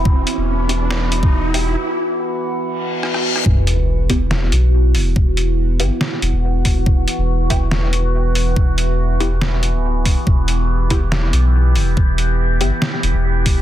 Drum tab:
HH |--x---x---x---o-|----------------|--x---x---x---o-|--x---x---x---o-|
SD |--------o-------|------------rr-r|--------o-------|--------o-------|
BD |o----------o----|----------------|o-----o---------|o-------------o-|

HH |--x---x---x---o-|--x---x---x---o-|--x---x---x---o-|--x---x---x---o-|
SD |--------o-------|--------o-------|--------o-------|--------o-------|
BD |o-----o---------|o-------------o-|o-----o---------|o-------------o-|